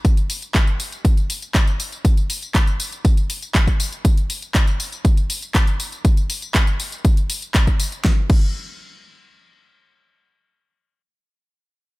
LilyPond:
\new DrumStaff \with { instrumentName = "Drums" } \drummode { \time 4/4 \tempo 4 = 120 <hh bd tamb>16 <hh tamb>16 <hho tamb>16 <hh tamb>16 <hc hh bd tamb>16 <hh tamb>16 <hho tamb>16 <hh tamb>16 <hh bd tamb>16 <hh tamb>16 <hho tamb>16 <hh tamb>16 <hc hh bd tamb>16 <hh tamb>16 <hho tamb>16 <hh tamb>16 | <hh bd tamb>16 <hh tamb>16 <hho tamb>16 <hh tamb>16 <hc hh bd tamb>16 <hh tamb>16 <hho tamb>16 <hh tamb>16 <hh bd tamb>16 <hh tamb>16 <hho tamb>16 <hh tamb>16 <hc hh bd tamb>16 <hh bd tamb>16 <hho tamb>16 <hh tamb>16 | <hh bd tamb>16 <hh tamb>16 <hho tamb>16 <hh tamb>16 <hc hh bd tamb>16 <hh tamb>16 <hho tamb>16 <hh tamb>16 <hh bd tamb>16 <hh tamb>16 <hho tamb>16 <hh tamb>16 <hc hh bd tamb>16 <hh tamb>16 <hho tamb>16 <hh tamb>16 | <hh bd tamb>16 <hh tamb>16 <hho tamb>16 <hh tamb>16 <hc hh bd tamb>16 <hh tamb>16 <hho tamb>16 <hh tamb>16 <hh bd tamb>16 <hh tamb>16 <hho tamb>16 <hh tamb>16 <hc hh bd tamb>16 <hh bd tamb>16 <hho tamb>16 <hh tamb>16 |
<bd sn>8 <cymc bd>8 r4 r4 r4 | r4 r4 r4 r4 | }